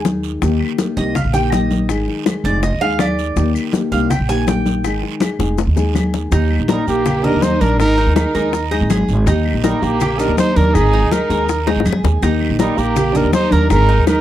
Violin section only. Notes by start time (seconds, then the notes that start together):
6.71 G3
6.89 A#3
7.25 D4
7.42 D#4
7.60 D4
7.79 D#4
8.16 D#4
9.64 G3
9.82 A#3
10.18 D4
10.38 D#4
10.56 D4
10.75 D#4
11.12 D#4
12.60 G3
12.79 A#3
13.16 D4
13.34 D#4
13.52 D4
13.71 D#4
14.08 D#4